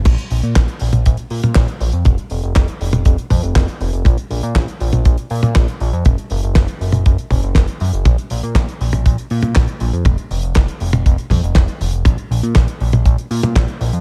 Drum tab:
CC |x---------------|----------------|----------------|----------------|
HH |xxoxxxoxxxoxxxox|xxoxxxoxxxoxxxox|xxoxxxoxxxoxxxox|xxoxxxoxxxoxxxox|
CP |----x-------x---|----x-------x---|----x-------x---|----x-------x---|
SD |----o-------o---|----o-------o---|----o-------o---|----o-------o---|
T1 |o------o---o----|o------o--o-----|o------o---o----|o------o--o-----|
BD |o---o---o---o---|o---o---o-o-o---|o---o---o---o---|o---o---o-o-o---|

CC |----------------|----------------|----------------|
HH |xxoxxxoxxxoxxxox|xxoxxxoxxxoxxxox|xxoxxxoxxxoxxxox|
CP |----x-------x---|----x-------x---|----x-------x---|
SD |----o-------o---|----o-------o---|----o-------o---|
T1 |o------o---o----|o------o--o-----|o------o---o----|
BD |o---o---o---o---|o---o---o-o-o---|o---o---o---o---|